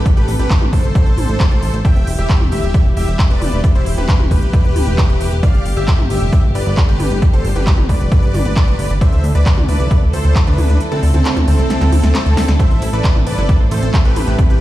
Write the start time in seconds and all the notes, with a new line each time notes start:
Already playing: C3 E3 A3 A4, downlifter
0.06 D4, kick, closed hi-hat
0.17 A1 G4 B4, closed hi-hat
0.28 A1, open hi-hat
0.39 A1 G4 B4, closed hi-hat, mid tom
0.50 kick, clap, closed hi-hat
0.62 A1, mid tom
0.73 A1 A4 C5, kick, open hi-hat
0.84 G1, closed hi-hat
0.95 kick, closed hi-hat
1.06 A1, closed hi-hat
1.18 A1, open hi-hat, mid tom
1.29 A1, closed hi-hat
1.40 kick, clap, closed hi-hat
1.51 A1, closed hi-hat
1.62 A1, open hi-hat
1.74 A1, closed hi-hat
1.85 B2 G3 E4 G4 E5 G5, kick, closed hi-hat
1.96 E1, closed hi-hat
2.07 E1, open hi-hat
2.18 E1 G4 E5, closed hi-hat
2.30 kick, clap, closed hi-hat
2.41 E1, mid tom
2.52 E1 G4 E5, open hi-hat
2.63 D1, closed hi-hat
2.74 kick, closed hi-hat
2.85 E1
2.97 E1 G4 E5, open hi-hat
3.08 E1, closed hi-hat
3.19 kick, clap, closed hi-hat
3.30 E1 B4 D5, closed hi-hat
3.41 E1, open hi-hat, mid tom
3.53 E1, closed hi-hat
3.64 kick, closed hi-hat
3.75 E1 E4 C5, closed hi-hat
3.86 E1, open hi-hat
3.97 E1 G4 B4, closed hi-hat, mid tom
4.09 kick, clap, closed hi-hat
4.20 E1, mid tom
4.31 E1 G4 B4, kick, open hi-hat
4.42 D1, closed hi-hat
4.53 kick, closed hi-hat
4.65 E1, closed hi-hat
4.76 D1, open hi-hat, mid tom
4.87 E1, closed hi-hat
4.98 kick, clap, closed hi-hat
5.09 E1, closed hi-hat
5.21 E1, open hi-hat
5.32 E1, closed hi-hat
5.43 D3 G3 A3 B3 D5 F5, kick, closed hi-hat
5.54 G1, closed hi-hat
5.65 G1, open hi-hat
5.77 G1 G4 E5, closed hi-hat
5.88 kick, clap, closed hi-hat
5.99 G1, mid tom
6.10 G1 G4 E5, open hi-hat
6.21 F1, closed hi-hat
6.33 kick, closed hi-hat
6.44 G1
6.55 G1 B4 D5, open hi-hat
6.66 G1, closed hi-hat
6.77 kick, clap, closed hi-hat
6.89 G1 G4 B4, closed hi-hat
7.00 G1, open hi-hat, mid tom
7.11 G1, closed hi-hat
7.22 kick, closed hi-hat
7.33 G1 A4 C5, closed hi-hat
7.45 G1, open hi-hat
7.56 G1 G4 B4, closed hi-hat, mid tom
7.67 kick, clap, closed hi-hat
7.78 G1, mid tom
7.89 G1 B4 D5, kick, open hi-hat
8.00 F1, closed hi-hat
8.12 kick, closed hi-hat
8.23 G1, closed hi-hat
8.34 G1, open hi-hat, mid tom
8.45 G1, closed hi-hat
8.56 kick, clap, closed hi-hat
8.68 G1, closed hi-hat
8.79 G1, open hi-hat
8.90 G1, closed hi-hat
9.01 D3 E3 A3 E4 A4 C5 E5, kick, closed hi-hat
9.12 D2, closed hi-hat
9.24 D2, open hi-hat
9.35 D2 B4 D5, closed hi-hat
9.46 kick, clap, closed hi-hat
9.57 D2, mid tom
9.68 D2 B4 D5, open hi-hat
9.80 C2, closed hi-hat
9.91 kick, closed hi-hat
10.02 D2
10.13 D2 A4 C5, open hi-hat
10.25 D2, closed hi-hat
10.36 kick, clap, closed hi-hat
10.47 D2 D4 B4, closed hi-hat
10.58 D2, open hi-hat, mid tom
10.69 D2, closed hi-hat
10.80 closed hi-hat
10.92 D2 C4 A4, closed hi-hat
11.03 D2, open hi-hat
11.14 D2 C4 A4, closed hi-hat, mid tom
11.25 clap, closed hi-hat
11.36 D2, closed hi-hat, mid tom
11.48 D2 C4 A4, open hi-hat
11.59 C2, closed hi-hat
11.70 snare, closed hi-hat
11.81 D2, snare, closed hi-hat
11.92 D2, open hi-hat, mid tom
12.04 D2, snare, closed hi-hat
12.15 snare, clap, closed hi-hat
12.26 D2, closed hi-hat
12.37 D2, snare, open hi-hat
12.48 D2, snare, closed hi-hat
12.59 C3 E3 A3 C5 E5, kick, closed hi-hat
12.71 A1 C4, closed hi-hat
12.82 A1 E4, open hi-hat, ride
12.93 A1 A4 B4 D5, closed hi-hat
13.04 C5, kick, clap, closed hi-hat
13.15 A1 A3, mid tom
13.27 A1 C4 B4 D5, open hi-hat, ride
13.38 G1 E4, closed hi-hat
13.49 A4, kick, closed hi-hat
13.60 A1 C5
13.71 A1 A3 A4 C5, open hi-hat, ride
13.83 A1 C4, closed hi-hat
13.94 E4, kick, clap, closed hi-hat
14.05 A1 G4 A4 B4, closed hi-hat
14.16 A1 C5, open hi-hat, mid tom, ride
14.27 A1 A3, closed hi-hat
14.39 C4, kick, closed hi-hat
14.50 A1 E4 G4 B4, closed hi-hat